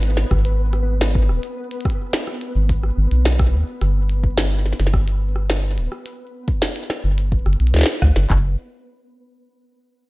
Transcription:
Already playing: analog synth bass G#1, synth texture B3 B4
0.03 closed hi-hat
0.17 snare
0.31 analog synth bass G#1, kick, cross-stick
0.45 closed hi-hat
0.73 cross-stick, closed hi-hat
1.01 snare, closed hi-hat
1.15 kick
1.29 analog synth bass D#1, cross-stick
1.43 closed hi-hat
1.71 closed hi-hat
1.81 closed hi-hat
1.85 kick, cross-stick
1.90 closed hi-hat
2.13 snare, closed hi-hat
2.27 cross-stick
2.41 closed hi-hat
2.55 analog synth bass G#1
2.69 kick, closed hi-hat
2.83 cross-stick
2.97 analog synth bass G#1
3.11 analog synth bass B1, closed hi-hat
3.25 snare
3.39 kick, cross-stick, closed hi-hat
3.53 analog synth bass D#2
3.81 analog synth bass G1, cross-stick, closed hi-hat
4.10 closed hi-hat
4.24 kick
4.38 cross-stick, snare
4.66 snare
4.73 snare
4.80 analog synth bass G1, snare, closed hi-hat
4.87 snare
4.94 kick, cross-stick
5.08 closed hi-hat
5.36 cross-stick
5.50 snare, closed hi-hat
5.78 analog synth bass D1, closed hi-hat
5.92 cross-stick
6.06 closed hi-hat
6.48 kick, closed hi-hat
6.62 snare
6.76 closed hi-hat
6.90 cross-stick, snare
7.04 analog synth bass G1
7.18 closed hi-hat
7.32 kick
7.46 analog synth bass G1, cross-stick, closed hi-hat
7.53 closed hi-hat
7.60 analog synth bass B1, closed hi-hat
7.67 closed hi-hat
7.74 analog synth bass D2, snare, closed hi-hat
7.76 snare
7.79 snare
7.81 snare
7.83 snare
7.86 snare
8.02 analog synth bass D2, kick, cross-stick
8.16 analog synth bass G1, snare, closed hi-hat
8.30 analog synth bass F#1, kick, clap

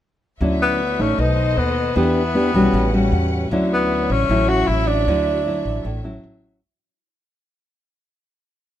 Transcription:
0.40 upright bass D2, nylon-string guitar D3 F#3 C#4 E4, string section F#4 C#5 E5
0.62 tenor saxophone B3
0.99 upright bass A1, nylon-string guitar A3 D#4, tenor saxophone C#4
1.18 upright bass B1, nylon-string guitar B2, tenor saxophone D#4, string section A4 B4 C5 D#5
1.57 upright bass D#2, tenor saxophone B3
1.96 upright bass E2, nylon-string guitar E3 B3 D4 G4, tenor saxophone B3, string section D4 E5
2.35 nylon-string guitar B3 D4 G4
2.54 upright bass B1, nylon-string guitar G3 C#4 F#4
2.73 upright bass A1, nylon-string guitar A2, string section C#4 F#5
2.93 nylon-string guitar G3 C#4 F#4
3.12 upright bass E2
3.50 upright bass D2, nylon-string guitar D3 F#3 C#4 E4, string section F#4 C#5 E5
3.73 tenor saxophone B3
4.10 upright bass A1, tenor saxophone C#4
4.29 upright bass A1, nylon-string guitar A2 F#3 C#4 E4
4.49 tenor saxophone F#4
4.68 upright bass A1, tenor saxophone E4
4.87 tenor saxophone D4
5.07 upright bass D2, nylon-string guitar D3 F#3 E4
5.46 nylon-string guitar F#3 E4
5.65 upright bass A1
5.85 upright bass A1, nylon-string guitar A2
6.04 nylon-string guitar F#3 C#4 E4
6.24 upright bass A1

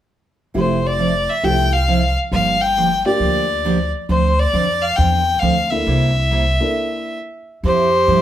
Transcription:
0.54 upright bass F1, steel-string acoustic guitar F3 C4 E4 A4, upright piano A3 E4 F4 G4, fiddle C5
0.87 fiddle D5
0.98 steel-string acoustic guitar F3 C4 E4 A4
1.30 fiddle E5
1.43 upright bass C2, steel-string acoustic guitar F3 C4 E4 A4, upright piano A3 E4 F4 G4, fiddle G5
1.73 fiddle F5
1.88 steel-string acoustic guitar F3 C4 E4 A4
2.32 upright bass G1, steel-string acoustic guitar D3 F3 A#3 D4 G4, fiddle F5
2.62 fiddle G5
2.77 steel-string acoustic guitar D3 F3 A#3 D4 G4
3.05 upright piano A#3 D4 F4 G4, fiddle D5
3.20 upright bass D2, steel-string acoustic guitar D3 F3 A#3 D4 G4
3.65 steel-string acoustic guitar D3 F3 A#3 D4 G4
4.09 upright bass D2, steel-string acoustic guitar D3 F3 C4 D4 A4, fiddle C5
4.39 fiddle D5
4.53 upright bass F2, steel-string acoustic guitar D3 F3 C4 D4 A4
4.82 fiddle F5
4.96 upright bass E2, steel-string acoustic guitar D3 F3 C4 D4 A4, fiddle G5
5.40 upright bass D2, steel-string acoustic guitar D3 F3 C4 D4 A4, fiddle F5
5.70 upright piano A#3 D4 E4 A4, fiddle E5
5.86 upright bass C2, steel-string acoustic guitar C3 G3 A#3 E4 G4
6.31 steel-string acoustic guitar C3 G3 A#3 E4 G4
6.60 upright piano A#3 D4 E4 A4
7.63 upright bass F2, steel-string acoustic guitar F3 C4 E4 A4, clarinet G4, fiddle C5
8.07 upright bass G2, steel-string acoustic guitar F3 C4 E4 A4

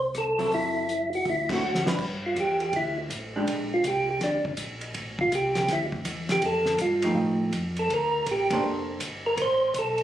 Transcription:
Already playing: tonewheel organ C2
0.15 tonewheel organ A4, cross-stick, closed hi-hat
0.38 hollow-body jazz guitar F#3 C4 E4 A4, open hi-hat
0.51 tonewheel organ F#1 E4, kick, open hi-hat
0.89 closed hi-hat
1.13 tonewheel organ F#4, open hi-hat
1.25 tonewheel organ D2, kick, open hi-hat
1.29 tonewheel organ E4
1.49 hollow-body jazz guitar D3 A3 C4 F#4, tonewheel organ F#4, kick, crash
1.75 snare
1.87 hollow-body jazz guitar G3 D4 E4 B4, snare
1.99 tonewheel organ G2, kick, crash
2.26 tonewheel organ F4
2.36 tonewheel organ E2, kick, hi-hat pedal, ride
2.40 tonewheel organ G4
2.60 tonewheel organ G4, ride
2.73 tonewheel organ D2 E4, kick, ride
3.10 tonewheel organ A1, kick, hi-hat pedal, ride
3.36 hollow-body jazz guitar G#3 D4 G4
3.47 tonewheel organ A#1, kick, ride
3.74 tonewheel organ F4
3.84 tonewheel organ C2 G4, kick, hi-hat pedal, ride
4.11 tonewheel organ G4
4.20 tonewheel organ D2 D4, kick, snare, ride
4.45 tonewheel organ D2, kick
4.57 tonewheel organ A#1, kick, hi-hat pedal, ride
4.81 ride
4.94 tonewheel organ A1, kick, ride
5.19 tonewheel organ F4, kick
5.32 tonewheel organ C2 G4, kick, hi-hat pedal, ride
5.55 tonewheel organ G4, snare, ride
5.68 tonewheel organ D2, kick, snare, ride
5.73 tonewheel organ E4
5.92 kick
6.05 tonewheel organ E2, kick, hi-hat pedal, ride
6.29 tonewheel organ G4, snare, ride
6.42 tonewheel organ F2, kick, ride
6.46 tonewheel organ A4
6.66 snare
6.78 tonewheel organ G2 F4, kick, hi-hat pedal, ride
7.02 hollow-body jazz guitar F3 A3 D#4 G4, ride
7.15 tonewheel organ A2, kick
7.52 tonewheel organ F2, kick, hi-hat pedal, ride
7.76 tonewheel organ A4, ride
7.90 tonewheel organ D2, kick, ride
7.94 tonewheel organ A#4
8.26 tonewheel organ A1, kick, hi-hat pedal, ride
8.31 tonewheel organ G4
8.50 hollow-body jazz guitar A#3 D4 A4 C5, kick, ride
8.63 tonewheel organ F1, kick
9.00 tonewheel organ G1, kick, hi-hat pedal, ride
9.26 tonewheel organ A#4
9.37 tonewheel organ A1, kick, ride
9.42 tonewheel organ C5
9.74 tonewheel organ B1, kick, hi-hat pedal, ride
9.79 tonewheel organ A4
9.98 ride

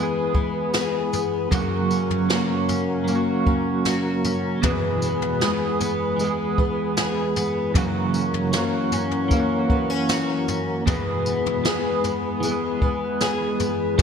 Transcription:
Already playing: twelve-string acoustic guitar E2 G#3 B3, tonewheel organ E3 G#3 B3 G#4 B4, clean electric guitar E3 G#3
0.00 clean electric guitar B3 G#4
0.34 twelve-string acoustic guitar B3, kick
0.73 twelve-string acoustic guitar G#4, snare, tambourine
1.13 twelve-string acoustic guitar B3, floor tom, tambourine
1.51 clean electric guitar F#2 C#3 F#3 A#3 C#4 F#4, twelve-string acoustic guitar F#2, tonewheel organ C#3 F#3 A#3 F#4 A#4, kick, floor tom, tambourine
1.91 twelve-string acoustic guitar C#4, tambourine
2.10 floor tom
2.29 clean electric guitar F#3 A#3 C#4, twelve-string acoustic guitar A#3, snare, tambourine
2.34 clean electric guitar F#4
2.69 twelve-string acoustic guitar C#4, floor tom, tambourine
3.04 clean electric guitar F#3, twelve-string acoustic guitar A#3, tambourine
3.09 clean electric guitar A#3 C#4
3.15 clean electric guitar F#4
3.47 twelve-string acoustic guitar C#4, kick
3.85 twelve-string acoustic guitar F#4, snare, tambourine
4.25 twelve-string acoustic guitar C#4, floor tom, tambourine
4.62 clean electric guitar E2 B2 E3 G#3 B3 G#4, twelve-string acoustic guitar E2, tonewheel organ E3 G#3 B3 G#4 B4, kick, floor tom, tambourine
5.02 twelve-string acoustic guitar B3, tambourine
5.22 floor tom
5.40 clean electric guitar E3 G#3 B3, twelve-string acoustic guitar G#3, snare, tambourine
5.45 clean electric guitar G#4
5.81 twelve-string acoustic guitar B3, floor tom, tambourine
6.16 clean electric guitar E3, twelve-string acoustic guitar G#3, tambourine
6.21 clean electric guitar G#3 B3
6.27 clean electric guitar G#4
6.58 twelve-string acoustic guitar B3, kick
6.97 twelve-string acoustic guitar G#4, snare, tambourine
7.36 twelve-string acoustic guitar B3, floor tom, tambourine
7.74 clean electric guitar F#2 C#3 E3 A#3 C#4 F#4, twelve-string acoustic guitar F#2, tonewheel organ A#3 C#4 F#4 A#4, kick, floor tom, tambourine
8.14 twelve-string acoustic guitar C#4, tambourine
8.34 floor tom
8.52 clean electric guitar E3 A#3 C#4, twelve-string acoustic guitar A#3, snare, tambourine
8.57 clean electric guitar F#4
8.92 twelve-string acoustic guitar C#4, floor tom, tambourine
9.11 floor tom
9.28 clean electric guitar E3, twelve-string acoustic guitar A#3, kick, tambourine
9.33 clean electric guitar A#3 C#4
9.40 clean electric guitar F#4
9.70 twelve-string acoustic guitar B3, kick
9.90 twelve-string acoustic guitar C#4
10.09 twelve-string acoustic guitar F#4, snare, tambourine
10.48 twelve-string acoustic guitar C#4, floor tom, tambourine
10.86 clean electric guitar E2 B2 E3 G#3 B3 G#4, twelve-string acoustic guitar E2, tonewheel organ E3 G#3 B3 G#4 B4, kick, floor tom, tambourine
11.26 twelve-string acoustic guitar B3, tambourine
11.46 floor tom
11.64 clean electric guitar E3 G#3 B3, twelve-string acoustic guitar G#3, snare, tambourine
11.69 clean electric guitar G#4
12.04 twelve-string acoustic guitar B3, floor tom, tambourine
12.40 clean electric guitar E3, twelve-string acoustic guitar G#3, tambourine
12.44 clean electric guitar G#3 B3
12.52 clean electric guitar G#4
12.82 twelve-string acoustic guitar B3, kick
13.21 twelve-string acoustic guitar G#4, snare, tambourine
13.60 twelve-string acoustic guitar B3, floor tom, tambourine
13.98 twelve-string acoustic guitar F#2, tonewheel organ C#3 F#3 A#3 F#4 A#4, clean electric guitar F#3, kick, floor tom, tambourine

